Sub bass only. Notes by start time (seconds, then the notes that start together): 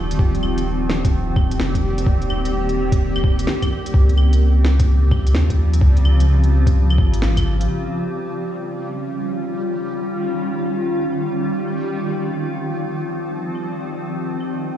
Already playing: D#1
0.19 D#1
1.60 F1
2.07 D#1
3.94 C#2
5.35 D#2
5.81 C#2
6.98 G#1